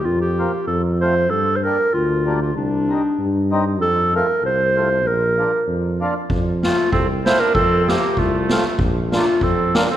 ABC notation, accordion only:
X:1
M:2/4
L:1/8
Q:"Swing" 1/4=96
K:Bb
V:1 name="Accordion"
z [B,CF] z [A,CF] | z [G,B,D] z [G,B,D] | z [G,CE] z [G,CE] | z [A,CF] z [A,CF] |
z [B,DF] z [B,DF] | [K:F] z [A,CF] z [A,CF] | z [A,CF] z [A,CF] | z [B,DF] z [B,DF] |]